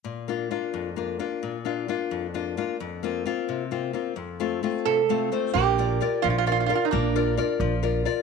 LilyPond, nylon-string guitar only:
\new Staff \with { instrumentName = "Nylon-string guitar" } { \time 6/8 \key bes \major \tempo 4. = 87 bes,8 <bes d' f'>8 <bes d' f'>8 f,8 <bes d' f'>8 <bes d' f'>8 | bes,8 <bes d' f'>8 <bes d' f'>8 f,8 <bes d' f'>8 <bes d' f'>8 | f,8 <bes c' f'>8 <bes c' f'>8 c8 <bes c' f'>8 <bes c' f'>8 | f,8 <a c' f'>8 <a c' f'>8 c8 <a c' f' f''>8 <a c' f' c''>8 |
bes8 <f' bes' d''>8 <f' bes' d''>8 f8 <f' bes' d''>8 <f' bes' d''>8 | bes8 <f' bes' d''>8 <f' bes' d''>8 f8 <f' bes' d''>8 <f' bes' d''>8 | }